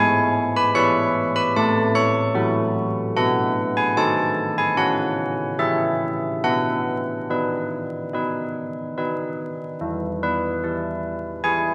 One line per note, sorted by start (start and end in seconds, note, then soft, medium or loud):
0.00 0.74 G#3 medium
0.00 0.54 G#5 loud
0.56 0.77 B5 loud
0.75 1.53 E4 medium
0.75 1.53 B4 medium
0.75 1.34 C#6 loud
1.36 1.57 B5 loud
1.56 2.35 A3 medium
1.56 1.95 A5 loud
1.95 3.13 C#6 loud
2.35 3.12 E4 medium
2.35 3.13 F#4 medium
3.17 3.95 B3 medium
3.17 3.75 F#5 loud
3.77 3.98 G#5 loud
3.97 4.74 D#4 medium
3.97 4.74 A4 medium
3.97 4.55 A5 loud
4.58 4.78 G#5 loud
4.77 5.57 C#4 medium
4.77 5.56 F#5 loud
5.59 6.40 E4 medium
5.59 6.40 G#4 medium
5.59 6.41 E5 medium
6.44 7.27 B3 medium
6.44 8.94 F#5 medium
7.30 8.10 D#4 soft
7.30 8.11 B4 medium
8.13 8.94 D#4 medium
8.13 8.95 B4 medium
8.98 9.78 D#4 medium
8.98 9.78 B4 medium
9.81 11.74 E3 medium
10.23 11.41 B4 medium
10.64 11.43 E4 soft
11.44 11.74 E4 soft
11.44 11.74 G#4 medium
11.44 11.74 G#5 medium